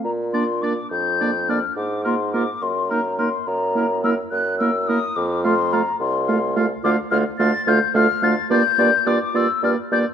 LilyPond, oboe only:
\new Staff \with { instrumentName = "Oboe" } { \time 6/8 \key bes \major \tempo 4. = 71 r8 d''8 d''8 r8 d''8 d''8 | r8 bes'8 bes'8 r8 bes'8 bes'8 | r8 bes'8 bes'8 r8 bes'8 bes'8 | r8 f''8 f''8 r8 f''8 f''8 |
\key d \minor f''8 f''8 f''8 f''8 f''8 f''8 | d''8 d''8 d''8 d''8 d''8 d''8 | }